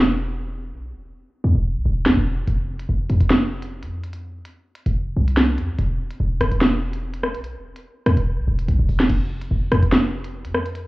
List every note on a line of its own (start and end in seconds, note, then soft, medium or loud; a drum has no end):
0.00 0.74 E1 loud
0.72 0.95 B1 loud
0.93 1.13 E1 loud
1.44 1.55 E2 loud
1.55 1.77 E1 loud
1.76 1.85 B1 loud
1.86 2.08 E1 loud
2.06 2.17 E2 loud
2.06 snare loud
2.17 2.39 E1 loud
2.38 2.47 F1 loud
2.47 2.87 F1 loud
2.47 closed hi-hat medium
2.79 closed hi-hat medium
2.89 3.09 F1 loud
3.10 3.20 F2 loud
3.10 closed hi-hat medium
3.21 3.84 F1 loud
3.21 closed hi-hat medium
3.30 snare loud
3.62 closed hi-hat medium
3.83 4.42 F2 medium
3.83 closed hi-hat medium
4.04 closed hi-hat medium
4.13 closed hi-hat medium
4.45 closed hi-hat medium
4.75 closed hi-hat medium
4.86 5.15 F1 loud
4.86 closed hi-hat medium
5.17 5.59 C2 loud
5.28 closed hi-hat medium
5.37 snare loud
5.37 closed hi-hat medium
5.58 5.70 F2 loud
5.58 closed hi-hat medium
5.69 5.78 C2 loud
5.79 5.98 E1 loud
5.79 closed hi-hat medium
6.11 closed hi-hat medium
6.20 6.40 E1 loud
6.41 6.51 E1 loud
6.41 cross-stick loud
6.41 closed hi-hat medium
6.52 7.36 E1 loud
6.52 closed hi-hat medium
6.61 snare loud
6.93 closed hi-hat medium
7.14 closed hi-hat medium
7.23 cross-stick loud
7.34 7.57 B1 loud
7.34 closed hi-hat medium
7.44 closed hi-hat medium
7.55 7.75 E1 loud
7.76 closed hi-hat medium
8.06 8.17 E2 loud
8.06 cross-stick loud
8.06 closed hi-hat medium
8.17 8.39 E1 loud
8.17 closed hi-hat medium
8.38 8.47 B1 loud
8.48 8.67 E1 loud
8.59 closed hi-hat medium
8.68 8.79 B1 loud
8.68 closed hi-hat medium
8.79 8.89 E1 loud
8.89 9.09 E1 loud
8.89 open hi-hat medium
9.00 snare medium
9.10 9.49 F1 loud
9.10 closed hi-hat medium
9.10 crash loud
9.41 closed hi-hat medium
9.51 9.71 F1 loud
9.72 9.82 F2 loud
9.72 cross-stick loud
9.72 closed hi-hat medium
9.83 10.46 F1 loud
9.83 closed hi-hat medium
9.92 snare loud
10.24 closed hi-hat medium
10.45 10.87 F2 loud
10.45 closed hi-hat medium
10.54 cross-stick loud
10.66 closed hi-hat medium
10.75 closed hi-hat medium